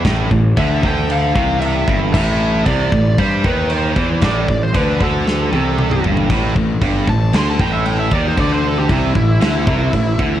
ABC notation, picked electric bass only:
X:1
M:4/4
L:1/8
Q:1/4=115
K:Am
V:1 name="Picked electric bass" clef=bass
A,,, A,,, D,, D,,2 C,,2 G,,, | A,,,2 C,, A,,, G,, ^D,,2 E,, | A,,, A,,, D,, D,,2 C,,2 G,,, | A,,, A,,, G,,, A,,, D,, A,,,2 ^D,, |
D,,2 C,, A,,, D,, C,, A,,, D,, |]